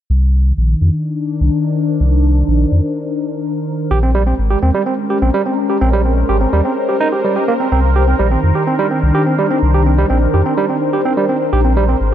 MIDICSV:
0, 0, Header, 1, 4, 480
1, 0, Start_track
1, 0, Key_signature, -3, "minor"
1, 0, Tempo, 476190
1, 101, Time_signature, 4, 2, 24, 8
1, 12239, End_track
2, 0, Start_track
2, 0, Title_t, "Analog synth pad"
2, 0, Program_c, 0, 89
2, 101, Note_on_c, 0, 51, 65
2, 589, Note_on_c, 0, 62, 88
2, 1065, Note_on_c, 0, 70, 85
2, 1251, Note_on_c, 0, 72, 67
2, 3941, Note_off_c, 0, 51, 0
2, 3941, Note_off_c, 0, 62, 0
2, 3941, Note_on_c, 0, 56, 74
2, 4524, Note_on_c, 0, 61, 83
2, 7781, Note_off_c, 0, 56, 0
2, 7781, Note_off_c, 0, 61, 0
2, 7781, Note_on_c, 0, 51, 70
2, 8321, Note_on_c, 0, 62, 69
2, 11621, Note_off_c, 0, 51, 0
2, 11621, Note_off_c, 0, 62, 0
2, 11621, Note_on_c, 0, 56, 77
2, 11871, Note_on_c, 0, 61, 75
2, 12239, Note_off_c, 0, 56, 0
2, 12239, Note_off_c, 0, 61, 0
2, 12239, Note_off_c, 0, 70, 0
2, 12239, Note_off_c, 0, 72, 0
2, 12239, End_track
3, 0, Start_track
3, 0, Title_t, "Tine electric piano"
3, 0, Program_c, 1, 4
3, 3941, Note_on_c, 1, 67, 82
3, 4010, Note_off_c, 1, 67, 0
3, 4061, Note_on_c, 1, 60, 73
3, 4131, Note_off_c, 1, 60, 0
3, 4181, Note_on_c, 1, 55, 95
3, 4250, Note_off_c, 1, 55, 0
3, 4301, Note_on_c, 1, 60, 69
3, 4370, Note_off_c, 1, 60, 0
3, 4541, Note_on_c, 1, 67, 72
3, 4610, Note_off_c, 1, 67, 0
3, 4660, Note_on_c, 1, 60, 74
3, 4730, Note_off_c, 1, 60, 0
3, 4781, Note_on_c, 1, 55, 97
3, 4850, Note_off_c, 1, 55, 0
3, 4901, Note_on_c, 1, 60, 76
3, 4970, Note_off_c, 1, 60, 0
3, 5141, Note_on_c, 1, 67, 73
3, 5211, Note_off_c, 1, 67, 0
3, 5261, Note_on_c, 1, 60, 75
3, 5331, Note_off_c, 1, 60, 0
3, 5381, Note_on_c, 1, 55, 99
3, 5451, Note_off_c, 1, 55, 0
3, 5501, Note_on_c, 1, 60, 72
3, 5571, Note_off_c, 1, 60, 0
3, 5741, Note_on_c, 1, 67, 74
3, 5811, Note_off_c, 1, 67, 0
3, 5861, Note_on_c, 1, 60, 88
3, 5931, Note_off_c, 1, 60, 0
3, 5981, Note_on_c, 1, 55, 98
3, 6051, Note_off_c, 1, 55, 0
3, 6101, Note_on_c, 1, 60, 70
3, 6171, Note_off_c, 1, 60, 0
3, 6341, Note_on_c, 1, 67, 79
3, 6411, Note_off_c, 1, 67, 0
3, 6461, Note_on_c, 1, 60, 71
3, 6531, Note_off_c, 1, 60, 0
3, 6581, Note_on_c, 1, 55, 97
3, 6651, Note_off_c, 1, 55, 0
3, 6701, Note_on_c, 1, 60, 76
3, 6770, Note_off_c, 1, 60, 0
3, 6941, Note_on_c, 1, 67, 74
3, 7011, Note_off_c, 1, 67, 0
3, 7061, Note_on_c, 1, 63, 96
3, 7130, Note_off_c, 1, 63, 0
3, 7181, Note_on_c, 1, 67, 73
3, 7250, Note_off_c, 1, 67, 0
3, 7300, Note_on_c, 1, 55, 85
3, 7405, Note_off_c, 1, 55, 0
3, 7421, Note_on_c, 1, 67, 74
3, 7490, Note_off_c, 1, 67, 0
3, 7541, Note_on_c, 1, 58, 97
3, 7583, Note_off_c, 1, 58, 0
3, 7661, Note_on_c, 1, 60, 79
3, 7730, Note_off_c, 1, 60, 0
3, 7781, Note_on_c, 1, 60, 83
3, 7850, Note_off_c, 1, 60, 0
3, 8021, Note_on_c, 1, 67, 76
3, 8091, Note_off_c, 1, 67, 0
3, 8141, Note_on_c, 1, 60, 75
3, 8210, Note_off_c, 1, 60, 0
3, 8261, Note_on_c, 1, 55, 98
3, 8330, Note_off_c, 1, 55, 0
3, 8381, Note_on_c, 1, 60, 75
3, 8450, Note_off_c, 1, 60, 0
3, 8621, Note_on_c, 1, 67, 74
3, 8690, Note_off_c, 1, 67, 0
3, 8741, Note_on_c, 1, 60, 78
3, 8811, Note_off_c, 1, 60, 0
3, 8861, Note_on_c, 1, 55, 101
3, 8931, Note_off_c, 1, 55, 0
3, 8981, Note_on_c, 1, 60, 75
3, 9050, Note_off_c, 1, 60, 0
3, 9220, Note_on_c, 1, 67, 81
3, 9290, Note_off_c, 1, 67, 0
3, 9341, Note_on_c, 1, 60, 71
3, 9410, Note_off_c, 1, 60, 0
3, 9460, Note_on_c, 1, 55, 91
3, 9530, Note_off_c, 1, 55, 0
3, 9580, Note_on_c, 1, 60, 77
3, 9650, Note_off_c, 1, 60, 0
3, 9820, Note_on_c, 1, 67, 76
3, 9890, Note_off_c, 1, 67, 0
3, 9941, Note_on_c, 1, 60, 75
3, 10010, Note_off_c, 1, 60, 0
3, 10060, Note_on_c, 1, 55, 99
3, 10130, Note_off_c, 1, 55, 0
3, 10180, Note_on_c, 1, 60, 82
3, 10250, Note_off_c, 1, 60, 0
3, 10420, Note_on_c, 1, 67, 72
3, 10490, Note_off_c, 1, 67, 0
3, 10540, Note_on_c, 1, 60, 76
3, 10610, Note_off_c, 1, 60, 0
3, 10660, Note_on_c, 1, 55, 101
3, 10730, Note_off_c, 1, 55, 0
3, 10780, Note_on_c, 1, 60, 76
3, 10850, Note_off_c, 1, 60, 0
3, 11020, Note_on_c, 1, 67, 74
3, 11090, Note_off_c, 1, 67, 0
3, 11140, Note_on_c, 1, 60, 86
3, 11210, Note_off_c, 1, 60, 0
3, 11261, Note_on_c, 1, 55, 93
3, 11330, Note_off_c, 1, 55, 0
3, 11380, Note_on_c, 1, 60, 73
3, 11450, Note_off_c, 1, 60, 0
3, 11620, Note_on_c, 1, 67, 82
3, 11690, Note_off_c, 1, 67, 0
3, 11740, Note_on_c, 1, 60, 75
3, 11810, Note_off_c, 1, 60, 0
3, 11860, Note_on_c, 1, 55, 99
3, 11930, Note_off_c, 1, 55, 0
3, 11980, Note_on_c, 1, 60, 75
3, 12050, Note_off_c, 1, 60, 0
3, 12239, End_track
4, 0, Start_track
4, 0, Title_t, "Sub bass"
4, 0, Program_c, 2, 38
4, 101, Note_on_c, 2, 36, 94
4, 529, Note_off_c, 2, 36, 0
4, 580, Note_on_c, 2, 34, 84
4, 756, Note_off_c, 2, 34, 0
4, 820, Note_on_c, 2, 41, 87
4, 908, Note_off_c, 2, 41, 0
4, 1420, Note_on_c, 2, 36, 88
4, 1509, Note_off_c, 2, 36, 0
4, 2020, Note_on_c, 2, 36, 97
4, 2449, Note_off_c, 2, 36, 0
4, 2501, Note_on_c, 2, 34, 85
4, 2677, Note_off_c, 2, 34, 0
4, 2741, Note_on_c, 2, 41, 87
4, 2829, Note_off_c, 2, 41, 0
4, 3941, Note_on_c, 2, 34, 92
4, 4370, Note_off_c, 2, 34, 0
4, 4421, Note_on_c, 2, 32, 86
4, 4597, Note_off_c, 2, 32, 0
4, 4661, Note_on_c, 2, 39, 84
4, 4749, Note_off_c, 2, 39, 0
4, 5261, Note_on_c, 2, 34, 93
4, 5349, Note_off_c, 2, 34, 0
4, 5861, Note_on_c, 2, 34, 98
4, 6289, Note_off_c, 2, 34, 0
4, 6341, Note_on_c, 2, 32, 83
4, 6517, Note_off_c, 2, 32, 0
4, 6581, Note_on_c, 2, 39, 84
4, 6669, Note_off_c, 2, 39, 0
4, 7781, Note_on_c, 2, 36, 94
4, 8210, Note_off_c, 2, 36, 0
4, 8261, Note_on_c, 2, 34, 86
4, 8437, Note_off_c, 2, 34, 0
4, 8501, Note_on_c, 2, 41, 86
4, 8589, Note_off_c, 2, 41, 0
4, 9102, Note_on_c, 2, 36, 96
4, 9189, Note_off_c, 2, 36, 0
4, 9701, Note_on_c, 2, 36, 98
4, 10130, Note_off_c, 2, 36, 0
4, 10181, Note_on_c, 2, 34, 84
4, 10357, Note_off_c, 2, 34, 0
4, 10421, Note_on_c, 2, 41, 88
4, 10509, Note_off_c, 2, 41, 0
4, 11621, Note_on_c, 2, 34, 101
4, 12050, Note_off_c, 2, 34, 0
4, 12101, Note_on_c, 2, 32, 89
4, 12239, Note_off_c, 2, 32, 0
4, 12239, End_track
0, 0, End_of_file